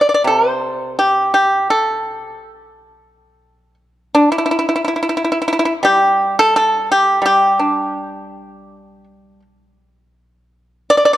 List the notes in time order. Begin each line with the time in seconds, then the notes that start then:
0.01 D5
0.09 D5
0.14 D5
0.24 C3 A4
0.49 C5
0.99 G4
1.34 G4
1.70 A4
4.15 D4
4.32 E4
4.38 E4
4.46 E4
4.51 E4
4.59 E4
4.69 E4
4.76 E4
4.85 E4
4.96 E4
5.03 E4
5.09 E4
5.17 E4
5.24 E4
5.32 E4
5.42 E4
5.48 E4
5.53 E4
5.59 E4
5.65 E4
5.83 G3 G4
6.39 A4
6.56 A4
6.92 G4
7.22 G3 G4
7.59 D4
10.90 D5
10.97 D5
11.05 D5
11.13 D5